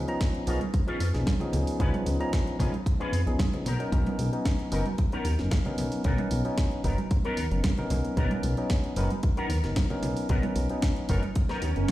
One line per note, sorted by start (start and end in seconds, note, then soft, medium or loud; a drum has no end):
0.07 0.44 F3 medium
0.07 0.44 B3 medium
0.07 0.44 C#4 medium
0.07 0.44 D#4 medium
0.07 0.45 A#5 loud
0.07 closed hi-hat soft
0.21 kick loud
0.21 snare loud
0.21 closed hi-hat medium
0.35 closed hi-hat soft
0.47 0.59 B1 loud
0.47 0.59 F3 loud
0.47 0.59 B3 medium
0.47 0.60 C#4 medium
0.47 0.61 C#4 medium
0.47 0.60 D#4 medium
0.47 0.61 F4 medium
0.47 0.60 G#4 loud
0.47 0.61 A#4 medium
0.47 open hi-hat loud
0.61 closed hi-hat soft
0.61 high conga medium
0.74 muted clean electric guitar stroke soft
0.74 kick loud
0.74 closed hi-hat medium
0.87 0.99 F3 medium
0.87 0.99 B3 medium
0.87 0.99 C#4 medium
0.87 1.07 C#4 medium
0.87 0.99 D#4 medium
0.87 1.07 F4 medium
0.87 0.99 G#4 medium
0.87 1.07 B4 loud
0.87 closed hi-hat soft
1.00 1.12 F2 medium
1.00 open hi-hat loud
1.14 1.25 B1 medium
1.14 1.37 F3 medium
1.14 1.37 B3 medium
1.14 1.37 C#4 medium
1.14 1.38 D#4 medium
1.14 1.38 G#4 medium
1.14 snare soft
1.14 closed hi-hat soft
1.26 muted clean electric guitar stroke medium
1.26 kick loud
1.26 snare loud
1.26 closed hi-hat medium
1.26 high conga loud
1.40 1.77 F3 medium
1.40 1.77 B3 medium
1.40 1.77 C#4 medium
1.40 1.77 D#4 medium
1.40 1.77 G#4 loud
1.40 muted clean electric guitar stroke soft
1.40 closed hi-hat soft
1.40 low conga medium
1.53 1.65 C#2 medium
1.53 open hi-hat loud
1.53 low conga medium
1.67 open hi-hat medium
1.79 1.92 C#2 loud
1.79 2.17 F3 medium
1.79 2.17 B3 medium
1.79 1.94 C#4 loud
1.79 2.17 C#4 medium
1.79 2.17 D#4 medium
1.79 1.94 F4 loud
1.79 2.17 G#4 loud
1.79 1.94 B4 loud
1.79 kick loud
1.79 closed hi-hat medium
1.94 closed hi-hat soft
1.94 high conga medium
2.06 2.18 C#2 loud
2.06 muted clean electric guitar stroke soft
2.06 open hi-hat loud
2.19 2.56 F3 medium
2.19 2.56 B3 medium
2.19 2.56 C#4 medium
2.19 2.57 D#4 medium
2.19 2.57 A#5 loud
2.19 closed hi-hat soft
2.33 kick loud
2.33 snare loud
2.33 closed hi-hat medium
2.47 closed hi-hat soft
2.59 2.71 B1 loud
2.59 2.72 F3 medium
2.59 2.72 B3 medium
2.59 2.72 C#4 medium
2.59 2.74 C#4 medium
2.59 2.72 D#4 medium
2.59 2.74 F4 medium
2.59 2.72 G#4 loud
2.59 2.74 B4 medium
2.59 kick medium
2.59 open hi-hat loud
2.59 low conga medium
2.73 closed hi-hat soft
2.73 high conga medium
2.86 muted clean electric guitar stroke soft
2.86 kick loud
2.86 closed hi-hat medium
2.99 3.11 F3 medium
2.99 3.11 B3 medium
2.99 3.11 C#4 medium
2.99 3.20 C#4 loud
2.99 3.11 D#4 medium
2.99 3.20 F4 medium
2.99 3.11 G#4 medium
2.99 3.20 B4 loud
2.99 closed hi-hat soft
3.13 3.25 F2 medium
3.13 open hi-hat loud
3.26 3.37 B1 medium
3.26 3.38 F3 medium
3.26 3.38 B3 medium
3.26 3.38 C#4 medium
3.26 3.38 D#4 medium
3.26 3.38 G#4 medium
3.26 closed hi-hat soft
3.39 muted clean electric guitar stroke medium
3.39 kick loud
3.39 snare loud
3.39 closed hi-hat medium
3.39 high conga loud
3.53 3.64 F3 medium
3.53 3.64 B3 medium
3.53 3.65 C#4 medium
3.53 3.65 D#4 medium
3.53 3.65 G#4 medium
3.53 muted clean electric guitar stroke soft
3.53 closed hi-hat soft
3.53 low conga medium
3.66 3.78 B1 medium
3.66 4.09 B3 medium
3.66 4.09 D#4 medium
3.66 4.09 A#4 medium
3.66 open hi-hat loud
3.66 low conga medium
3.79 3.89 F#3 medium
3.79 3.89 B3 medium
3.79 3.89 C#4 medium
3.79 3.90 D#4 medium
3.79 3.90 A#4 loud
3.79 closed hi-hat soft
3.92 4.04 B1 loud
3.92 4.29 F#3 medium
3.92 4.30 B3 medium
3.92 4.30 C#4 medium
3.92 4.30 D#4 medium
3.92 4.30 A#4 loud
3.92 kick loud
3.92 closed hi-hat medium
4.06 closed hi-hat soft
4.06 high conga medium
4.19 4.31 B1 loud
4.19 muted clean electric guitar stroke soft
4.19 open hi-hat loud
4.32 4.69 F#3 medium
4.32 4.69 B3 medium
4.32 4.69 C#4 medium
4.32 4.69 D#4 medium
4.32 closed hi-hat soft
4.45 kick loud
4.45 snare loud
4.45 closed hi-hat medium
4.59 closed hi-hat soft
4.72 4.84 F#1 loud
4.72 4.84 F#3 loud
4.72 4.84 B3 medium
4.72 4.86 B3 medium
4.72 4.84 C#4 medium
4.72 4.85 D#4 medium
4.72 4.86 D#4 medium
4.72 4.86 A#4 medium
4.72 4.85 A#4 loud
4.72 open hi-hat loud
4.86 closed hi-hat soft
4.86 high conga medium
4.98 muted clean electric guitar stroke soft
4.98 kick loud
4.98 closed hi-hat medium
5.12 5.24 F#3 medium
5.12 5.24 B3 medium
5.12 5.32 B3 loud
5.12 5.24 C#4 medium
5.12 5.24 D#4 medium
5.12 5.32 D#4 medium
5.12 5.32 A#4 loud
5.12 5.24 A#4 medium
5.12 closed hi-hat soft
5.25 5.37 D#2 medium
5.25 open hi-hat loud
5.39 5.50 F#1 medium
5.39 5.62 F#3 medium
5.39 5.62 B3 medium
5.39 5.62 C#4 medium
5.39 5.63 D#4 medium
5.39 5.63 A#4 medium
5.39 snare soft
5.39 closed hi-hat soft
5.51 muted clean electric guitar stroke medium
5.51 kick loud
5.51 snare loud
5.51 closed hi-hat medium
5.51 high conga loud
5.65 6.02 F#3 medium
5.65 6.02 B3 medium
5.65 6.02 C#4 medium
5.65 6.02 D#4 medium
5.65 6.02 A#4 loud
5.65 muted clean electric guitar stroke soft
5.65 closed hi-hat soft
5.65 low conga medium
5.78 5.90 B1 medium
5.78 open hi-hat loud
5.78 low conga medium
5.92 open hi-hat medium
6.04 6.16 B1 loud
6.04 6.42 F#3 medium
6.04 6.19 B3 loud
6.04 6.42 B3 medium
6.04 6.42 C#4 medium
6.04 6.19 D#4 loud
6.04 6.42 D#4 medium
6.04 6.19 A#4 loud
6.04 6.42 A#4 loud
6.04 kick loud
6.04 closed hi-hat medium
6.18 closed hi-hat soft
6.18 high conga medium
6.31 6.43 B1 medium
6.31 muted clean electric guitar stroke soft
6.31 open hi-hat loud
6.45 6.81 F#3 medium
6.45 6.81 B3 medium
6.45 6.81 C#4 medium
6.45 6.82 D#4 medium
6.45 closed hi-hat soft
6.58 kick loud
6.58 snare loud
6.58 closed hi-hat medium
6.72 closed hi-hat soft
6.84 6.96 F#1 loud
6.84 6.97 F#3 loud
6.84 6.97 B3 medium
6.84 6.98 B3 medium
6.84 6.97 C#4 medium
6.84 6.98 D#4 medium
6.84 6.97 D#4 medium
6.84 6.98 A#4 medium
6.84 6.97 A#4 loud
6.84 kick medium
6.84 open hi-hat medium
6.98 closed hi-hat soft
6.98 high conga medium
7.11 muted clean electric guitar stroke soft
7.11 kick loud
7.11 closed hi-hat medium
7.25 7.36 F#3 medium
7.25 7.36 B3 medium
7.25 7.44 B3 medium
7.25 7.36 C#4 medium
7.25 7.45 D#4 medium
7.25 7.36 D#4 medium
7.25 7.45 A#4 loud
7.25 7.36 A#4 medium
7.25 closed hi-hat soft
7.37 7.49 D#2 medium
7.37 open hi-hat loud
7.51 7.62 F#1 medium
7.51 7.74 F#3 medium
7.51 7.75 B3 medium
7.51 7.75 C#4 medium
7.51 7.75 D#4 medium
7.51 7.75 A#4 medium
7.51 closed hi-hat soft
7.63 muted clean electric guitar stroke medium
7.63 kick loud
7.63 snare loud
7.63 closed hi-hat medium
7.63 high conga loud
7.77 8.14 F#3 medium
7.77 8.14 B3 medium
7.77 8.14 C#4 medium
7.77 8.14 D#4 medium
7.77 8.15 A#4 loud
7.77 muted clean electric guitar stroke soft
7.77 closed hi-hat soft
7.77 low conga medium
7.90 8.02 B1 medium
7.90 open hi-hat loud
7.90 low conga medium
8.05 closed hi-hat soft
8.16 8.29 B1 loud
8.16 8.54 F#3 medium
8.16 8.31 B3 loud
8.16 8.54 B3 medium
8.16 8.55 C#4 medium
8.16 8.31 D#4 medium
8.16 8.55 D#4 medium
8.16 8.31 A#4 loud
8.16 8.55 A#4 loud
8.16 kick loud
8.16 closed hi-hat medium
8.31 closed hi-hat soft
8.31 high conga medium
8.43 8.55 B1 loud
8.43 muted clean electric guitar stroke soft
8.43 open hi-hat loud
8.57 8.94 F#3 medium
8.57 8.94 B3 medium
8.57 8.94 C#4 medium
8.57 8.94 D#4 medium
8.57 closed hi-hat soft
8.70 kick loud
8.70 snare loud
8.70 closed hi-hat medium
8.84 closed hi-hat soft
8.96 9.09 F#1 loud
8.96 9.09 F#3 medium
8.96 9.11 B3 medium
8.96 9.09 B3 medium
8.96 9.09 C#4 medium
8.96 9.11 D#4 medium
8.96 9.09 D#4 medium
8.96 9.10 A#4 loud
8.96 9.11 B4 medium
8.96 open hi-hat loud
9.10 closed hi-hat soft
9.10 high conga medium
9.23 muted clean electric guitar stroke soft
9.23 kick loud
9.23 closed hi-hat medium
9.37 9.48 F#3 medium
9.37 9.57 B3 loud
9.37 9.49 B3 medium
9.37 9.49 C#4 medium
9.37 9.57 D#4 loud
9.37 9.49 D#4 medium
9.37 9.57 A#4 loud
9.37 9.49 A#4 medium
9.37 closed hi-hat soft
9.49 9.62 D#2 medium
9.49 open hi-hat loud
9.64 9.75 F#1 medium
9.64 9.87 F#3 medium
9.64 9.87 B3 medium
9.64 9.87 C#4 medium
9.64 9.88 D#4 medium
9.64 9.88 A#4 medium
9.64 snare soft
9.64 closed hi-hat soft
9.76 muted clean electric guitar stroke medium
9.76 kick loud
9.76 snare loud
9.76 closed hi-hat medium
9.76 high conga medium
9.90 10.26 F#3 medium
9.90 10.27 B3 medium
9.90 10.27 C#4 medium
9.90 10.27 D#4 medium
9.90 10.27 A#4 loud
9.90 muted clean electric guitar stroke soft
9.90 closed hi-hat soft
9.90 low conga medium
10.02 10.15 B1 medium
10.02 open hi-hat loud
10.02 low conga medium
10.17 open hi-hat medium
10.29 10.41 B1 loud
10.29 10.67 F#3 medium
10.29 10.43 B3 loud
10.29 10.67 B3 medium
10.29 10.67 C#4 medium
10.29 10.44 D#4 loud
10.29 10.67 D#4 medium
10.29 10.44 A#4 loud
10.29 10.67 A#4 loud
10.29 kick loud
10.29 closed hi-hat medium
10.43 closed hi-hat soft
10.43 high conga loud
10.56 10.68 B1 loud
10.56 muted clean electric guitar stroke soft
10.56 open hi-hat loud
10.70 11.06 F#3 medium
10.70 11.06 B3 medium
10.70 11.06 C#4 medium
10.70 11.07 D#4 medium
10.70 closed hi-hat soft
10.82 kick loud
10.82 snare loud
10.82 closed hi-hat medium
10.96 closed hi-hat soft
11.09 11.21 F#1 loud
11.09 11.21 F#3 loud
11.09 11.21 B3 medium
11.09 11.23 B3 medium
11.09 11.22 C#4 medium
11.09 11.23 D#4 medium
11.09 11.22 D#4 medium
11.09 11.23 A#4 loud
11.09 11.22 A#4 loud
11.09 kick medium
11.09 open hi-hat loud
11.09 low conga medium
11.23 closed hi-hat soft
11.23 high conga medium
11.35 muted clean electric guitar stroke soft
11.35 kick loud
11.35 closed hi-hat loud
11.35 swell medium
11.49 11.61 F#3 medium
11.49 11.69 B3 loud
11.49 11.61 B3 medium
11.49 11.61 C#4 medium
11.49 11.69 D#4 medium
11.49 11.61 D#4 medium
11.49 11.69 A#4 loud
11.49 11.61 A#4 medium
11.49 snare soft
11.49 closed hi-hat soft
11.62 11.74 D#2 medium
11.62 open hi-hat loud
11.76 11.87 F#1 medium
11.76 11.91 F#3 medium
11.76 11.91 B3 medium
11.76 11.91 C#4 medium
11.76 11.91 D#4 medium
11.76 11.91 A#4 medium
11.76 closed hi-hat soft